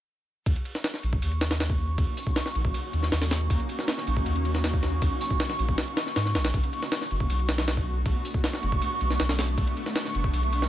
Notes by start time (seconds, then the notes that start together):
0.46 D#2 A#3 C#4 D#4 F#4 C#6, kick, ride
0.56 ride
0.65 ride
0.75 snare
0.84 snare, ride
0.94 snare
1.03 A#1, ride
1.13 kick
1.22 D#2, ride
1.32 ride
1.41 snare, ride
1.51 snare, ride
1.60 snare, ride
1.70 kick
1.98 D#2, kick, ride
2.17 open hi-hat
2.27 kick
2.36 snare, ride
2.46 snare
2.55 A#1, ride
2.65 kick
2.74 ride
2.93 D#2, ride
3.03 snare
3.12 D#2, snare, ride
3.22 snare, ride
3.31 snare, ride
3.41 ride
3.50 D#2, kick, ride
3.60 ride
3.69 ride
3.79 snare
3.88 snare, ride
3.98 snare
4.07 A#1, ride
4.17 kick
4.26 D#2, ride
4.36 ride
4.45 ride
4.55 snare
4.64 snare, ride
4.74 kick
4.83 snare, ride
5.02 D#2, kick, ride
5.21 open hi-hat
5.31 kick
5.40 snare, ride
5.50 snare
5.59 A#1, ride
5.69 kick
5.78 snare, ride
5.88 ride
5.97 snare, ride
6.07 snare
6.16 G#2, snare, ride
6.26 snare
6.35 A#1, snare, ride
6.45 snare, ride
6.54 B1 A3 B3 D4 F#4, kick, ride
6.64 ride
6.73 ride
6.83 snare
6.92 snare, ride
7.01 snare
7.11 F#1, ride
7.20 kick
7.30 B1, ride
7.39 ride
7.49 snare, ride
7.58 snare, ride
7.68 snare, ride
7.77 kick
8.06 B1, kick, ride
8.25 open hi-hat
8.34 kick
8.44 snare, ride
8.53 snare
8.63 F#1, ride
8.72 kick
8.82 ride
9.01 B1, ride
9.10 snare
9.20 B1, snare, ride
9.29 snare, ride
9.39 snare, ride
9.48 ride
9.58 B1 G#4, kick, ride
9.67 ride
9.77 ride
9.86 snare
9.96 snare, ride
10.05 snare
10.15 F#1, ride
10.24 kick
10.34 B1, ride
10.43 ride
10.53 ride
10.62 snare